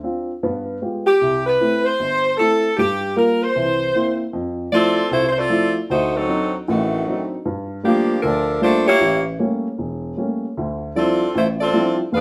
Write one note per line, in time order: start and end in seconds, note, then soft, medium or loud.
0.03 0.30 C4 soft
0.03 0.30 D4 soft
0.03 0.30 F4 soft
0.43 0.76 G2 medium
0.43 0.77 B3 medium
0.82 1.08 G#3 soft
0.82 1.08 B3 soft
0.82 1.09 F4 soft
0.82 1.09 G4 soft
1.07 1.43 G4 medium
1.21 1.55 C2 medium
1.47 1.85 B4 medium
1.60 1.87 A3 soft
1.60 1.87 C4 soft
1.60 1.87 E4 soft
1.85 2.38 C5 loud
2.00 2.33 G1 medium
2.37 2.65 A3 soft
2.37 2.65 C4 soft
2.37 2.66 E4 soft
2.37 2.74 A4 medium
2.77 3.11 G2 medium
2.77 3.11 G3 medium
2.77 3.13 G4 medium
3.16 3.43 G3 soft
3.16 3.43 A#3 soft
3.16 3.43 F4 soft
3.16 3.42 A#4 medium
3.43 4.20 C5 medium
3.56 3.89 C2 medium
3.56 3.89 E3 medium
3.94 4.21 A#3 soft
3.94 4.21 C4 soft
3.94 4.21 E4 soft
4.33 4.67 F2 medium
4.72 4.99 F3 soft
4.72 4.99 A3 soft
4.72 5.09 C4 medium
4.72 4.99 E4 medium
4.72 5.09 F4 medium
4.72 5.09 A4 medium
4.72 5.09 D5 loud
5.11 5.45 C2 medium
5.11 5.28 A3 medium
5.11 5.28 E4 medium
5.11 5.28 F4 medium
5.11 5.27 C5 medium
5.28 5.37 C5 medium
5.38 5.76 C4 medium
5.38 5.77 F4 medium
5.38 5.77 A4 medium
5.38 5.77 D5 loud
5.50 5.77 F3 soft
5.50 5.77 A3 soft
5.50 5.77 E4 soft
5.90 6.23 D2 medium
5.90 6.13 A3 medium
5.90 6.13 D#4 medium
5.90 6.13 F#4 medium
5.90 6.13 C5 medium
6.16 6.54 F#3 medium
6.16 6.54 C4 medium
6.16 6.54 D#4 medium
6.16 6.54 A4 medium
6.28 6.55 F#3 soft
6.28 6.55 C4 soft
6.28 6.55 D4 soft
6.28 6.55 D#4 medium
6.68 7.01 A1 medium
6.68 7.01 A2 medium
6.68 7.28 D#3 medium
6.68 7.28 A3 medium
6.68 7.28 C4 medium
6.68 7.28 F#4 medium
7.07 7.33 F#3 soft
7.07 7.33 C4 soft
7.07 7.34 D4 soft
7.07 7.34 D#4 soft
7.45 7.79 G2 medium
7.83 8.21 F3 medium
7.83 8.10 G3 soft
7.83 8.11 A3 soft
7.83 8.11 A#3 soft
7.83 8.21 A#3 medium
7.83 8.21 D4 medium
7.83 8.11 F4 medium
7.83 8.21 G4 medium
8.23 8.57 D2 medium
8.23 8.59 F3 medium
8.23 8.59 D4 medium
8.23 8.59 A4 medium
8.23 8.59 A#4 medium
8.61 8.88 G3 soft
8.61 8.88 A3 soft
8.61 8.86 A3 medium
8.61 8.89 A#3 soft
8.61 8.86 D4 medium
8.61 8.89 F4 soft
8.61 8.86 F4 medium
8.61 8.86 C5 loud
8.87 9.23 A#3 medium
8.87 9.23 E4 medium
8.87 9.23 G4 medium
8.87 9.24 C#5 loud
9.01 9.35 A1 medium
9.39 9.66 G3 soft
9.39 9.66 A3 soft
9.39 9.66 A#3 soft
9.39 9.66 C#4 medium
9.78 10.12 E1 medium
10.17 10.44 G3 soft
10.17 10.44 A3 soft
10.17 10.44 A#3 soft
10.17 10.45 C#4 medium
10.57 10.91 D2 medium
10.57 10.91 D3 medium
10.95 11.22 F3 soft
10.95 11.22 G3 soft
10.95 11.22 C4 soft
10.95 11.33 C4 medium
10.95 11.23 D4 soft
10.95 11.23 E4 soft
10.95 11.32 F4 medium
10.95 11.32 A4 medium
10.95 11.32 D5 medium
11.35 11.69 A1 medium
11.35 11.68 A2 medium
11.35 11.47 A3 medium
11.35 11.47 E4 medium
11.35 11.47 F4 medium
11.35 11.47 C5 medium
11.61 11.97 C4 medium
11.61 11.97 F4 medium
11.61 11.97 A4 medium
11.61 11.97 D5 loud
11.73 12.00 F3 soft
11.73 12.00 G3 soft
11.73 12.00 C4 soft
11.73 12.00 D4 soft
11.73 12.00 E4 soft
12.12 12.21 E2 medium
12.12 12.21 D4 medium
12.12 12.21 G#4 medium
12.12 12.21 B4 medium
12.12 12.21 F5 loud